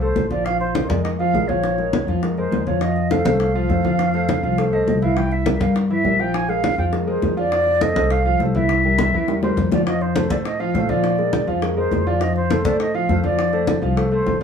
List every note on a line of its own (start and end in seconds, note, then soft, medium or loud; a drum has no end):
0.00 0.13 C2 medium
0.00 0.26 A3 medium
0.00 0.26 A4 medium
0.00 0.29 C5 medium
0.00 0.26 C5 medium
0.00 high conga soft
0.16 0.84 A#1 medium
0.16 high bongo soft
0.16 low bongo medium
0.16 high conga medium
0.31 0.43 F3 medium
0.31 0.43 F4 medium
0.31 0.46 D5 medium
0.31 0.44 F5 medium
0.31 high bongo soft
0.31 high conga medium
0.45 0.70 F3 medium
0.45 0.70 F4 medium
0.45 0.59 F5 loud
0.45 0.70 F5 medium
0.45 high bongo medium
0.45 high conga soft
0.60 0.90 C5 medium
0.60 high bongo soft
0.60 high conga soft
0.75 0.87 G#3 medium
0.75 0.88 G#4 medium
0.75 0.88 A#4 medium
0.75 high bongo medium
0.75 high conga loud
0.89 1.31 F2 medium
0.89 1.14 G#3 medium
0.89 1.14 G#4 medium
0.89 1.15 A#4 medium
0.89 1.02 D5 medium
0.89 high bongo soft
0.89 high conga medium
1.03 1.09 D#5 medium
1.03 high bongo medium
1.03 high conga soft
1.18 1.32 F3 medium
1.18 1.32 F4 medium
1.18 1.49 F5 medium
1.18 1.32 F5 medium
1.18 high conga soft
1.34 2.02 A#1 medium
1.34 1.46 G#3 medium
1.34 1.47 G#4 medium
1.34 1.47 A#4 medium
1.34 high bongo soft
1.34 low bongo medium
1.34 high conga soft
1.48 1.73 F3 medium
1.48 1.73 F4 medium
1.48 2.07 C#5 medium
1.48 1.74 F5 medium
1.48 high bongo soft
1.48 high conga medium
1.64 high bongo medium
1.64 high conga soft
1.78 2.03 G#3 medium
1.78 2.03 G#4 medium
1.78 2.03 A#4 medium
1.78 high bongo soft
1.78 high conga soft
1.93 high bongo medium
1.93 high conga medium
2.07 2.48 F2 medium
2.07 2.20 F3 medium
2.07 2.20 F4 medium
2.07 2.21 F5 medium
2.07 high bongo soft
2.07 high conga soft
2.23 2.35 G#3 medium
2.23 2.35 G#4 medium
2.23 2.35 A#4 medium
2.23 high bongo medium
2.23 high conga soft
2.38 2.62 G#3 medium
2.38 2.62 G#4 medium
2.38 2.62 A#4 medium
2.38 2.68 C5 medium
2.38 high conga soft
2.51 3.20 F2 medium
2.51 high bongo soft
2.51 low bongo medium
2.51 high conga medium
2.67 2.79 F3 medium
2.67 2.79 F4 medium
2.67 2.83 C#5 medium
2.67 2.79 F5 medium
2.67 high bongo soft
2.67 high conga medium
2.81 3.06 F3 medium
2.81 3.06 F4 medium
2.81 3.13 D#5 medium
2.81 3.06 F5 medium
2.81 high bongo medium
2.81 high conga soft
2.96 high bongo soft
2.96 high conga soft
3.11 3.23 A3 medium
3.11 3.23 A4 medium
3.11 3.24 C5 medium
3.11 3.40 F5 medium
3.11 high bongo medium
3.11 high conga medium
3.25 3.66 C2 medium
3.25 3.50 A3 medium
3.25 3.50 A4 medium
3.25 3.50 C5 medium
3.25 high bongo soft
3.25 high conga medium
3.40 4.75 F5 medium
3.40 high bongo medium
3.40 high conga soft
3.55 3.67 F3 medium
3.55 3.67 F4 medium
3.55 3.67 F5 medium
3.55 high conga soft
3.69 4.37 F2 medium
3.69 3.82 A3 medium
3.69 3.82 A4 medium
3.69 3.82 C5 medium
3.69 high bongo soft
3.69 low bongo medium
3.69 high conga soft
3.84 4.09 F3 medium
3.84 4.09 F4 medium
3.84 4.09 F5 medium
3.84 high bongo soft
3.84 high conga medium
3.99 high bongo medium
3.99 high conga soft
4.14 4.38 A3 medium
4.14 4.38 A4 medium
4.14 4.38 C5 medium
4.14 high bongo soft
4.14 high conga soft
4.29 high bongo medium
4.29 high conga medium
4.43 4.84 C2 medium
4.43 4.55 F3 medium
4.43 4.55 F4 medium
4.43 4.56 F5 medium
4.43 high bongo soft
4.43 high conga soft
4.58 4.70 A3 medium
4.58 4.70 A4 medium
4.58 4.70 C5 medium
4.58 high bongo medium
4.58 high conga soft
4.72 4.97 A3 medium
4.72 4.97 A4 medium
4.72 4.97 C5 medium
4.72 5.01 D#5 medium
4.72 high conga soft
4.87 5.55 C2 medium
4.87 high bongo soft
4.87 low bongo medium
4.87 high conga medium
5.02 5.14 E3 medium
5.02 5.14 E4 medium
5.02 5.14 E5 medium
5.02 5.19 F5 medium
5.02 high bongo soft
5.02 high conga medium
5.17 5.41 E3 medium
5.17 5.41 E4 medium
5.17 5.41 E5 medium
5.17 5.34 G5 loud
5.17 high bongo medium
5.17 high conga soft
5.31 5.61 E5 medium
5.31 high bongo soft
5.31 high conga soft
5.46 5.58 G3 medium
5.46 5.58 G4 medium
5.46 5.59 A#4 medium
5.46 high bongo medium
5.46 high conga medium
5.60 6.01 G2 medium
5.60 5.85 G3 medium
5.60 5.85 G4 medium
5.60 5.85 A#4 medium
5.60 5.75 F5 medium
5.60 high bongo soft
5.60 high conga medium
5.76 high bongo medium
5.76 high conga soft
5.90 6.02 E3 medium
5.90 6.02 E4 medium
5.90 6.22 E5 loud
5.90 6.02 E5 medium
5.90 high conga soft
6.04 6.72 A#1 medium
6.04 6.17 G3 medium
6.04 6.17 G4 medium
6.04 6.17 A#4 medium
6.04 high bongo soft
6.04 low bongo medium
6.04 high conga soft
6.19 6.43 F3 medium
6.19 6.43 F4 medium
6.19 6.44 F5 medium
6.19 6.36 G5 medium
6.19 high bongo soft
6.34 6.51 G#5 loud
6.34 high bongo medium
6.34 high conga soft
6.49 6.73 G#3 medium
6.49 6.73 G#4 medium
6.49 6.73 A#4 medium
6.49 6.78 F5 loud
6.49 high bongo soft
6.49 high conga soft
6.64 high bongo medium
6.64 high conga medium
6.78 7.19 F2 medium
6.78 6.90 F3 medium
6.78 6.90 F4 medium
6.78 6.91 F5 medium
6.78 6.84 G5 medium
6.78 high bongo soft
6.78 high conga soft
6.92 7.05 G#3 medium
6.92 7.05 G#4 medium
6.92 7.05 A#4 medium
6.92 high bongo medium
6.92 high conga soft
7.07 7.31 G#3 medium
7.07 7.32 G#4 medium
7.07 7.32 A#4 medium
7.07 7.35 C5 medium
7.07 high conga soft
7.22 7.90 F2 medium
7.22 high bongo soft
7.22 low bongo medium
7.22 high conga medium
7.37 7.49 F3 medium
7.37 7.49 F4 medium
7.37 7.83 D5 medium
7.37 7.49 F5 medium
7.37 high bongo soft
7.52 7.76 F3 medium
7.52 7.76 F4 medium
7.52 7.76 F5 medium
7.52 high bongo medium
7.52 high conga soft
7.66 high bongo soft
7.66 high conga soft
7.81 7.93 A3 medium
7.81 7.93 A4 medium
7.81 7.93 C5 medium
7.81 8.13 D#5 medium
7.81 high bongo medium
7.81 high conga medium
7.95 8.36 C2 medium
7.95 8.20 A3 medium
7.95 8.20 A4 medium
7.95 8.20 C5 medium
7.95 high bongo soft
7.95 high conga medium
8.11 8.40 F5 medium
8.11 high bongo medium
8.11 high conga soft
8.25 8.37 F3 medium
8.25 8.37 F4 medium
8.25 8.38 F5 medium
8.25 high conga soft
8.39 9.08 C2 medium
8.39 8.52 A3 medium
8.39 8.52 A4 medium
8.39 8.52 C5 medium
8.39 high bongo soft
8.39 low bongo medium
8.39 high conga soft
8.55 8.79 E3 medium
8.55 8.79 E4 medium
8.55 8.79 E5 medium
8.55 9.39 E5 medium
8.55 high bongo soft
8.55 high conga medium
8.69 high bongo medium
8.69 high conga soft
8.84 9.08 G3 medium
8.84 9.09 G4 medium
8.84 9.09 A#4 medium
8.84 high bongo soft
8.84 high conga soft
8.98 high bongo medium
8.98 high conga medium
9.13 9.54 E2 medium
9.13 9.26 E3 medium
9.13 9.26 E4 medium
9.13 9.26 E5 medium
9.13 high conga soft
9.28 9.40 G3 medium
9.28 9.40 G4 medium
9.28 9.41 A#4 medium
9.28 high bongo medium
9.28 high conga soft
9.43 9.67 G3 medium
9.43 9.67 G4 medium
9.43 9.67 A#4 medium
9.43 9.70 C5 medium
9.43 low bongo medium
9.43 high conga soft
9.56 10.25 F2 medium
9.56 low bongo medium
9.56 high conga medium
9.72 9.84 F3 medium
9.72 9.84 F4 medium
9.72 9.86 D5 medium
9.72 9.84 F5 medium
9.72 low bongo medium
9.72 high conga medium
9.86 10.11 F3 medium
9.86 10.11 F4 medium
9.86 10.03 D#5 medium
9.86 10.11 F5 medium
9.86 high bongo medium
9.86 high conga soft
10.01 10.30 C5 medium
10.01 high bongo soft
10.01 high conga soft
10.16 10.28 A3 medium
10.16 10.28 A4 medium
10.16 10.28 C5 medium
10.16 high bongo medium
10.16 high conga loud
10.30 10.71 A2 medium
10.30 10.55 A3 medium
10.30 10.55 A4 medium
10.30 10.55 C5 medium
10.30 10.37 D5 medium
10.30 high bongo soft
10.30 high conga medium
10.45 10.62 D#5 medium
10.45 high bongo medium
10.45 high conga soft
10.60 10.72 F3 medium
10.60 10.72 F4 loud
10.60 10.91 F5 medium
10.60 10.72 F5 medium
10.60 high conga soft
10.74 11.42 A#2 medium
10.74 10.87 A3 medium
10.74 10.87 A4 medium
10.74 10.87 C5 medium
10.74 high bongo soft
10.74 low bongo medium
10.74 high conga soft
10.89 11.13 F3 medium
10.89 11.14 F4 medium
10.89 11.48 D5 medium
10.89 11.14 F5 medium
10.89 high bongo soft
10.89 high conga medium
11.04 high bongo medium
11.04 high conga soft
11.18 11.42 G#3 medium
11.18 11.43 G#4 medium
11.18 11.43 A#4 medium
11.18 high bongo soft
11.18 high conga soft
11.33 high bongo medium
11.33 high conga medium
11.47 11.88 F2 medium
11.47 11.60 F3 medium
11.47 11.60 F4 medium
11.47 11.60 F5 medium
11.47 high bongo soft
11.47 high conga soft
11.62 11.74 G#3 medium
11.62 11.75 G#4 medium
11.62 11.75 A#4 medium
11.62 high bongo medium
11.62 high conga soft
11.77 12.01 G#3 medium
11.77 12.01 G#4 medium
11.77 12.01 A#4 medium
11.77 12.09 C5 medium
11.77 high conga soft
11.91 12.59 F2 medium
11.91 high bongo soft
11.91 low bongo medium
11.91 high conga medium
12.07 12.19 F3 medium
12.07 12.19 F4 medium
12.07 12.24 D5 medium
12.07 12.19 F5 medium
12.07 high bongo soft
12.21 12.45 F3 medium
12.21 12.45 F4 medium
12.21 12.36 D#5 medium
12.21 12.45 F5 medium
12.21 high bongo medium
12.21 high conga soft
12.36 12.67 C5 loud
12.36 high bongo soft
12.36 high conga soft
12.50 12.63 A3 medium
12.50 12.63 A4 medium
12.50 12.63 C5 medium
12.50 high bongo medium
12.50 high conga medium
12.64 13.06 A2 medium
12.64 12.89 A3 medium
12.64 12.89 A4 medium
12.64 12.90 C5 medium
12.64 12.80 D5 medium
12.64 high conga medium
12.80 12.97 D#5 loud
12.80 high bongo medium
12.80 high conga soft
12.94 13.06 F3 medium
12.94 13.06 F4 medium
12.94 13.07 F5 medium
12.94 13.24 F5 medium
12.94 high conga soft
13.09 13.77 F2 medium
13.09 13.21 A3 medium
13.09 13.21 A4 medium
13.09 13.22 C5 medium
13.09 high bongo soft
13.09 low bongo medium
13.09 high conga soft
13.24 13.48 F3 medium
13.24 13.48 F4 medium
13.24 13.79 D5 medium
13.24 13.48 F5 medium
13.24 high bongo soft
13.24 high conga medium
13.38 high bongo medium
13.38 high conga soft
13.53 13.77 A3 medium
13.53 13.77 A4 medium
13.53 13.77 C5 medium
13.53 high bongo soft
13.53 high conga soft
13.67 high bongo medium
13.67 high conga medium
13.82 14.23 C2 medium
13.82 13.94 F3 medium
13.82 13.94 F4 medium
13.82 13.95 F5 medium
13.82 high bongo soft
13.82 high conga soft
13.97 14.09 A3 medium
13.97 14.09 A4 medium
13.97 14.09 C5 medium
13.97 high bongo medium
13.97 high conga soft
14.12 14.36 A3 medium
14.12 14.36 A4 medium
14.12 14.39 C5 medium
14.12 14.36 C5 medium
14.12 high conga soft
14.26 14.43 A#1 medium
14.26 high bongo soft
14.26 low bongo medium
14.26 high conga medium